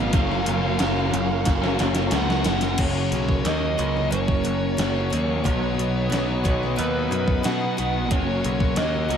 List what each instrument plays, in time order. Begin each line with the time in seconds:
Already playing: picked electric bass G#1, overdriven electric guitar B2 F#3 B3, clean electric guitar B2 D#3 B3 D#4 A#4, twelve-string acoustic guitar F#3 A#3 D#4, analog synth pad B3 A#5 D#6, lead electric guitar F5
0.00 clean electric guitar F#3
0.11 picked electric bass F#1, overdriven electric guitar F#2 C#3 F#3 A#3, clean electric guitar F#3 C#4, analog synth pad C#5 C#6, kick, closed hi-hat
0.15 clean electric guitar F4 A#4, analog synth pad A#4
0.32 snare
0.44 picked electric bass F#1, overdriven electric guitar C#3 A#3, clean electric guitar F#3 C#4, closed hi-hat
0.48 clean electric guitar F4 A#4
0.59 overdriven electric guitar F#3 A#3 C#4, clean electric guitar A#4
0.64 clean electric guitar C#4 F4
0.77 picked electric bass F#1, overdriven electric guitar F#2 C#3 F#3 A#3, clean electric guitar F#3, twelve-string acoustic guitar A#3, snare, closed hi-hat
0.81 clean electric guitar C#4 F4 A#4
0.92 overdriven electric guitar F#3 A#3 C#4
1.11 picked electric bass F#1, overdriven electric guitar F#2 C#3 F#3, clean electric guitar F#3 C#4 F4, muted overdriven electric guitar stroke, closed hi-hat
1.15 clean electric guitar A#4
1.45 picked electric bass F#1, overdriven electric guitar F#2 C#3 F#3, twelve-string acoustic guitar C#4, kick, snare, closed hi-hat
1.61 overdriven electric guitar F#3 A#3, clean electric guitar C#4 F4 A#4, snare
1.78 picked electric bass F#1, overdriven electric guitar C#3 A#3, clean electric guitar F#3 C#4 F4 A#4, snare, closed hi-hat
1.95 clean electric guitar C#4 F4 A#4, snare, closed hi-hat
2.11 picked electric bass C#2, overdriven electric guitar F#2 C#3 F#3 A#3, clean electric guitar F#3 C#4 F4, snare, closed hi-hat
2.15 clean electric guitar A#4, lead electric guitar F#5
2.28 overdriven electric guitar F#3 A#3 C#4, snare
2.44 picked electric bass F#1, overdriven electric guitar F#2 C#3 F#3 A#3, clean electric guitar F#3 C#4, twelve-string acoustic guitar A#3, snare, closed hi-hat
2.48 clean electric guitar F4 A#4
2.61 overdriven electric guitar F#3 A#3, clean electric guitar F4 A#4, snare, closed hi-hat
2.66 clean electric guitar C#4
2.78 picked electric bass F#1, clean electric guitar F#2 C#3 F#3 A#3 C#4 F#4, analog synth pad A#4 C#5 F#5 C#6, lead electric guitar C#5, kick, closed hi-hat, crash
3.12 picked electric bass B1, clean electric guitar F#3 A#3 C#4 F#4, closed hi-hat
3.29 kick
3.44 picked electric bass D#2, overdriven electric guitar C#3, clean electric guitar F#3 A#3 C#4 F#4, lead electric guitar D#5, snare, closed hi-hat
3.77 picked electric bass C#2, overdriven electric guitar F#2 C#3, clean electric guitar F#3 A#3 C#4 F#4, closed hi-hat
3.97 snare
4.11 picked electric bass F#1, clean electric guitar F#2 C#3 F#3 A#3 C#4 F#4, lead electric guitar C#5, closed hi-hat
4.28 kick
4.44 picked electric bass F#1, clean electric guitar F#3 A#3 C#4 F#4, closed hi-hat
4.77 picked electric bass F#1, overdriven electric guitar C#3, clean electric guitar F#3 A#3 C#4 F#4, snare, closed hi-hat
5.11 picked electric bass D#2, clean electric guitar F#3 A#3 C#4 F#4, closed hi-hat
5.44 picked electric bass B1, clean electric guitar B2 F#3 B3 D#4 F#4, twelve-string acoustic guitar D#3, analog synth pad B4 D#5 D#6, lead electric guitar C#5, kick, closed hi-hat
5.76 picked electric bass B1, clean electric guitar B3 D#4 F#4, closed hi-hat
6.09 picked electric bass B1, overdriven electric guitar B2, clean electric guitar F#3 B3 D#4 F#4, closed hi-hat
6.13 snare
6.43 picked electric bass B1, overdriven electric guitar B2 F#3, twelve-string acoustic guitar D#3, clean electric guitar B3 D#4 F#4, kick, closed hi-hat
6.63 snare
6.77 picked electric bass D#2, clean electric guitar B2 F#3 B3 D#4 F#4, lead electric guitar B4, closed hi-hat
7.11 picked electric bass F#2, clean electric guitar B3 D#4 F#4, closed hi-hat
7.28 kick
7.44 overdriven electric guitar B2, picked electric bass B2, clean electric guitar F#3 B3 D#4 F#4, lead electric guitar F#5, snare, closed hi-hat
7.78 picked electric bass B1, overdriven electric guitar F#3, clean electric guitar B3 D#4 F#4, closed hi-hat
8.11 picked electric bass F#1, clean electric guitar F#2 C#3 F#3 A#3 C#4 F#4, analog synth pad A#4 C#5 C#6, lead electric guitar C#5, kick, closed hi-hat
8.43 picked electric bass B1, clean electric guitar F#3 A#3 C#4 F#4, closed hi-hat
8.60 kick
8.76 picked electric bass D#2, overdriven electric guitar C#3, clean electric guitar F#3 A#3 C#4, lead electric guitar D#5, snare, closed hi-hat
8.80 clean electric guitar F#4
9.09 picked electric bass C#2, overdriven electric guitar F#2 C#3, clean electric guitar F#3 A#3 C#4 F#4, closed hi-hat